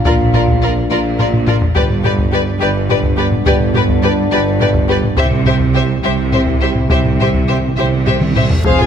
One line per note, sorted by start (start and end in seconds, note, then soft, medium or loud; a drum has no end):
0.00 1.57 D4 medium
0.00 1.57 F4 medium
0.05 0.80 A#1 medium
0.05 0.80 A#2 medium
0.05 0.14 F4 medium
0.05 0.14 A#4 medium
0.05 0.13 D5 medium
0.05 taiko loud
0.20 taiko low-mid soft
0.33 0.42 F4 medium
0.33 0.43 A#4 medium
0.33 0.41 D5 soft
0.33 taiko low-mid medium
0.48 taiko medium
0.62 0.70 F4 medium
0.62 0.71 A#4 medium
0.62 0.70 D5 medium
0.90 1.65 A#1 medium
0.90 1.65 A#2 medium
0.90 0.99 F4 medium
0.90 0.99 A#4 medium
0.90 0.99 D5 medium
1.19 1.27 F4 medium
1.19 1.27 A#4 medium
1.19 1.28 D5 medium
1.19 taiko low-mid medium
1.33 taiko low-mid medium
1.47 1.55 F4 medium
1.47 1.56 A#4 medium
1.47 1.55 D5 medium
1.47 taiko low-mid medium
1.62 taiko low medium
1.74 2.51 G1 medium
1.74 2.51 G2 medium
1.74 5.12 B3 medium
1.74 5.13 D4 medium
1.74 1.83 G4 medium
1.74 1.84 B4 medium
1.74 1.83 D5 medium
1.74 taiko medium
1.90 taiko low-mid soft
2.04 2.12 G4 medium
2.04 2.12 B4 medium
2.04 2.13 D5 medium
2.04 taiko low-mid medium
2.18 taiko medium
2.32 2.40 G4 medium
2.32 2.41 B4 medium
2.32 2.41 D5 medium
2.60 3.36 G1 medium
2.60 3.36 G2 medium
2.60 2.68 G4 medium
2.60 2.69 B4 medium
2.60 2.69 D5 medium
2.89 2.97 G4 medium
2.89 2.98 B4 medium
2.89 2.98 D5 medium
2.89 taiko low-mid medium
3.03 taiko medium
3.17 3.25 G4 medium
3.17 3.26 B4 medium
3.17 3.26 D5 medium
3.32 taiko low-mid medium
3.46 4.21 G1 medium
3.46 4.22 G2 medium
3.46 3.54 G4 medium
3.46 3.55 B4 medium
3.46 3.54 D5 medium
3.46 taiko loud
3.60 taiko low-mid soft
3.74 3.82 G4 medium
3.74 3.84 B4 medium
3.74 3.83 D5 medium
3.74 taiko low-mid medium
3.89 taiko medium
4.03 4.11 G4 medium
4.03 4.12 B4 medium
4.03 4.11 D5 medium
4.31 5.07 G1 medium
4.31 5.07 G2 medium
4.31 4.40 G4 medium
4.31 4.41 B4 medium
4.31 4.40 D5 medium
4.60 4.68 G4 medium
4.60 4.69 B4 medium
4.60 4.69 D5 medium
4.60 taiko low-mid medium
4.74 taiko medium
4.88 4.97 G4 medium
4.88 4.96 B4 medium
4.88 4.98 D5 medium
5.03 taiko low-mid soft
5.17 5.93 C2 medium
5.17 5.94 C3 medium
5.17 8.32 C4 medium
5.17 8.32 E4 medium
5.17 5.26 G4 medium
5.17 5.25 C5 medium
5.17 5.26 E5 medium
5.17 taiko medium
5.25 5.31 C3 soft
5.31 5.39 C3 soft
5.31 taiko low-mid soft
5.40 5.46 C3 soft
5.46 5.54 G4 medium
5.46 5.55 C5 medium
5.46 5.54 E5 medium
5.46 taiko low-mid medium
5.60 taiko medium
5.70 5.77 C3 soft
5.70 5.82 G4 medium
5.74 5.84 C3 soft
5.74 5.83 C5 medium
5.74 5.82 E5 medium
5.85 5.92 C3 soft
5.93 5.99 C3 soft
6.01 6.80 C2 medium
6.01 6.07 C3 soft
6.01 6.80 C3 medium
6.01 6.11 G4 medium
6.01 6.12 C5 medium
6.01 6.12 E5 medium
6.08 6.15 C3 soft
6.16 6.22 C3 soft
6.23 6.30 C3 soft
6.31 6.37 C3 soft
6.31 6.40 G4 medium
6.31 6.42 C5 medium
6.31 6.41 E5 medium
6.31 taiko low-mid medium
6.47 taiko medium
6.61 6.67 C3 medium
6.61 6.69 G4 soft
6.61 6.69 C5 medium
6.61 6.69 E5 medium
6.68 6.74 C3 medium
6.75 6.82 C3 medium
6.75 taiko low-mid soft
6.83 6.89 C3 medium
6.90 7.67 C2 medium
6.90 7.68 C2 medium
6.90 6.96 C3 medium
6.90 7.67 C3 medium
6.90 6.98 G4 medium
6.90 6.99 C5 medium
6.90 6.99 E5 medium
6.90 taiko medium
6.90 reverse cymbal medium
6.98 7.05 C3 medium
7.05 7.12 C3 medium
7.05 taiko low-mid soft
7.14 7.20 C3 medium
7.20 7.28 C3 medium
7.20 7.28 G4 medium
7.20 7.29 C5 medium
7.20 7.28 E5 medium
7.20 taiko low-mid medium
7.29 7.35 C3 medium
7.34 7.43 C3 medium
7.34 taiko medium
7.45 7.51 C3 medium
7.45 7.56 E5 medium
7.49 7.59 C3 medium
7.49 7.57 G4 medium
7.49 7.57 C5 medium
7.60 7.67 C3 medium
7.68 7.75 C3 medium
7.76 8.55 C2 medium
7.76 7.82 C3 medium
7.76 8.55 C3 medium
7.76 7.86 G4 medium
7.76 7.86 C5 medium
7.76 7.84 E5 medium
7.84 7.90 C3 medium
7.91 7.97 C3 medium
7.99 8.05 C3 medium
8.06 8.13 C3 medium
8.06 8.14 G4 medium
8.06 8.16 C5 medium
8.06 8.14 E5 medium
8.06 taiko low-mid medium
8.14 8.20 C3 medium
8.21 8.28 C3 medium
8.21 taiko mid medium
8.29 8.36 C3 medium
8.35 8.43 C3 medium
8.35 8.43 G4 soft
8.35 8.44 C5 medium
8.35 8.44 E5 medium
8.35 taiko low-mid medium
8.44 8.50 C3 medium
8.50 8.59 C3 loud
8.50 taiko low loud
8.64 8.86 F1 medium
8.64 8.86 F2 loud
8.64 8.86 F2 medium
8.64 8.86 F3 medium
8.64 8.86 C4 medium
8.64 8.78 G#4 medium
8.64 8.86 G#4 medium
8.64 8.79 C5 medium
8.64 8.78 F5 medium
8.64 taiko loud
8.64 impact medium
8.79 8.86 F4 medium
8.79 8.86 G#4 medium
8.79 8.86 G#5 medium
8.79 taiko low-mid soft